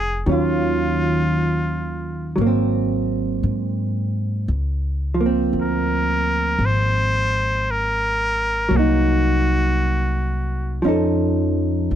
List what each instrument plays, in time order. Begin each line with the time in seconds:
Already playing: upright bass F1, hollow-body jazz guitar D#3 G#3 C#4, muted trumpet G#4
0.26 upright bass D#2, hollow-body jazz guitar D#3 F#3 C#4
0.31 hollow-body jazz guitar F4, muted trumpet F4
2.36 upright bass G#1, hollow-body jazz guitar F#3
2.41 hollow-body jazz guitar A#3
2.47 hollow-body jazz guitar C4
3.43 upright bass G#2
4.48 upright bass C#2
5.14 hollow-body jazz guitar F3
5.21 hollow-body jazz guitar A#3
5.26 hollow-body jazz guitar C4
5.53 upright bass D2
5.62 muted trumpet A#4
6.59 upright bass G#1
6.66 muted trumpet C5
7.70 muted trumpet A#4
8.69 upright bass C2, hollow-body jazz guitar F#3
8.74 hollow-body jazz guitar A#3, muted trumpet F#4
8.79 hollow-body jazz guitar D#4
10.82 upright bass F2, hollow-body jazz guitar F3 C#4 D#4
10.88 hollow-body jazz guitar A4
11.91 upright bass C2